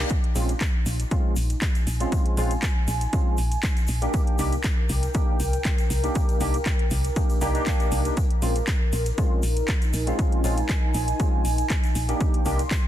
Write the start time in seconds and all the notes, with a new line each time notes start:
Already playing: D#4 G5, reverse cymbal
0.10 kick, closed hi-hat, shaker
0.24 closed hi-hat
0.35 A#1 G#3 C4 C#4 F4, open hi-hat, shaker
0.49 closed hi-hat, shaker
0.61 kick, clap, closed hi-hat, shaker
0.86 A#1, open hi-hat, shaker
1.00 closed hi-hat, shaker
1.11 G#3 C4 C#4 F4, kick, closed hi-hat, shaker
1.29 G#5
1.36 A#1, open hi-hat, shaker
1.50 closed hi-hat, shaker
1.62 kick, clap, closed hi-hat, shaker
1.75 closed hi-hat, shaker
1.87 A#1, open hi-hat, shaker
2.00 G#3 C4 C#4 F4, closed hi-hat, shaker
2.12 kick, closed hi-hat, shaker
2.26 closed hi-hat
2.37 A#1 G#3 C4 C#4 F4, open hi-hat, shaker
2.51 closed hi-hat, shaker
2.62 kick, clap, closed hi-hat, shaker
2.88 A#1, open hi-hat, shaker
3.01 closed hi-hat, shaker
3.13 G#3 C4 C#4 F4, kick, closed hi-hat, shaker
3.38 A#1, open hi-hat, shaker
3.52 closed hi-hat, shaker
3.63 kick, clap, closed hi-hat, shaker
3.77 closed hi-hat, shaker
3.87 A#1, open hi-hat, shaker
4.01 A#3 D4 D#4 G4, closed hi-hat, shaker
4.14 A#4, kick, closed hi-hat, shaker
4.27 closed hi-hat
4.37 C2 A#3 D4 D#4 G4 G5, open hi-hat, shaker
4.52 closed hi-hat, shaker
4.64 kick, clap, closed hi-hat, shaker
4.89 C2, open hi-hat, shaker
5.03 closed hi-hat, shaker
5.14 A#3 D4 D#4 G4, kick, closed hi-hat, shaker
5.40 C2, open hi-hat, shaker
5.53 closed hi-hat, shaker
5.65 kick, clap, closed hi-hat, shaker
5.78 closed hi-hat, shaker
5.90 C2, open hi-hat, shaker
6.03 A#3 D4 D#4 G4, closed hi-hat, shaker
6.15 kick, closed hi-hat, shaker
6.29 closed hi-hat, shaker
6.40 C2 A#3 D4 D#4 G4, open hi-hat, shaker
6.54 closed hi-hat, shaker
6.66 kick, clap, closed hi-hat, shaker
6.79 closed hi-hat
6.91 C2, open hi-hat, shaker
7.04 closed hi-hat, shaker
7.16 A#3 D4 D#4 G4, kick, closed hi-hat, shaker
7.30 closed hi-hat, shaker
7.41 C2 A#3 D4 D#4 G4, open hi-hat, shaker
7.54 A#3 D4 D#4 G4, closed hi-hat, shaker
7.66 kick, clap, closed hi-hat, shaker
7.80 closed hi-hat, shaker
7.92 C2, open hi-hat, shaker
8.05 closed hi-hat, shaker
8.17 kick, closed hi-hat, shaker
8.30 closed hi-hat
8.42 A#1 G#3 C4 C#4 F4, open hi-hat, shaker
8.56 closed hi-hat, shaker
8.67 kick, clap, closed hi-hat, shaker
8.77 D#4
8.93 A#1, open hi-hat, shaker
9.06 closed hi-hat, shaker
9.18 G#3 C4 C#4 F4, kick, closed hi-hat, shaker
9.43 A#1, open hi-hat, shaker
9.56 G#5, closed hi-hat, shaker
9.68 kick, clap, closed hi-hat, shaker
9.82 closed hi-hat, shaker
9.93 A#1, open hi-hat, shaker
10.07 G#3 C4 C#4 F4, closed hi-hat, shaker
10.19 kick, closed hi-hat, shaker
10.32 closed hi-hat
10.44 A#1 G#3 C4 C#4 F4, open hi-hat, shaker
10.57 closed hi-hat, shaker
10.69 kick, clap, closed hi-hat, shaker
10.94 A#1, open hi-hat, shaker
11.08 closed hi-hat, shaker
11.19 G#3 C4 C#4 F4, kick, closed hi-hat, shaker
11.45 A#1, open hi-hat, shaker
11.58 closed hi-hat, shaker
11.70 kick, clap, closed hi-hat, shaker
11.84 closed hi-hat, shaker
11.95 A#1, open hi-hat, shaker
12.08 A#3 D4 D#4 G4, closed hi-hat, shaker
12.20 C6, kick, closed hi-hat, shaker
12.34 closed hi-hat
12.45 C2 A#3 D4 D#4 G4 A#5, open hi-hat, shaker
12.59 closed hi-hat, shaker
12.71 kick, clap, closed hi-hat, shaker
12.76 F5